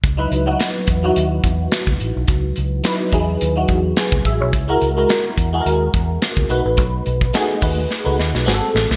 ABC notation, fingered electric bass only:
X:1
M:4/4
L:1/16
Q:"Swing 16ths" 1/4=107
K:C#m
V:1 name="Fingered electric bass" clef=bass
C,,2 C,,2 z2 E,,2 D,,2 E,,2 z C,, A,,, B,,, | C,,2 C,,2 z2 E,,2 D,,2 E,,2 z C,, A,,, B,,, | C,,2 C,,2 z2 E,,2 D,,2 E,,2 z C,, B,,, A,,, | B,,,2 B,,,2 z2 D,,2 z C,, D,, B,,, G,,, z A,,, ^B,,, |]